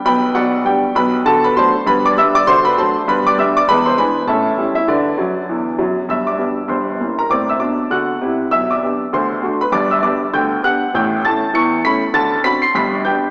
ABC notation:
X:1
M:4/4
L:1/8
Q:"Swing" 1/4=198
K:G
V:1 name="Grand piano"
[Bgb]2 [Fdf]2 [Gdg]2 [Bb] z | [Aa] [Bb] [cac']2 [Bb] [dd'] [ee'] [dd'] | [cc'] [Bb] [cac']2 [Bb] [dd'] [ee'] [dd'] | [Bb] [cc'] [B^gb]2 [Aea]3 [Ee] |
[DBd]6 z2 | [ee'] [dd']3 [cc']3 [_B_b] | [dd'] [ee'] [dd']2 [ff']3 z | [ee'] [dd']3 [cc']3 [Bb] |
[dd'] [ee'] [dd']2 [gg']2 [ff']2 | [gg']2 [aa']2 [^c'^c'']2 [bb']2 | [aa']2 [bb'] [c'c''] [bb']2 [gg'] z |]
V:2 name="Grand piano" clef=bass
[B,,,B,,]2 [B,,,B,,]2 [G,B,D]2 [B,,,B,,]2 | [D,F]2 [F,A,D]2 [G,,B,]2 [G,B,D]2 | [D,F]2 [F,A,D]2 [G,,B,]2 [G,B,D]2 | [E,,^G,]2 [G,DE]2 [A,,^C]2 [=G,CE]2 |
D,2 [F,,F,]2 [E,,E,]2 [F,,F,]2 | [G,,,G,,]2 [G,B,D]2 [G,,,G,,]2 [_B,_DE]2 | [A,,C]2 [B,,D]2 [D,F]2 [C,E]2 | [B,,,B,,]2 [B,DG]2 [D,,D,]2 [A,DF]2 |
[G,,,G,,]2 [B,DG]2 [D,,D,]2 [B,DG]2 | [A,,,A,,]2 [A,^CE]2 [E,,E,]2 [A,CE]2 | [D,,D,]2 [CDF]2 [G,,,G,,]2 [B,DG]2 |]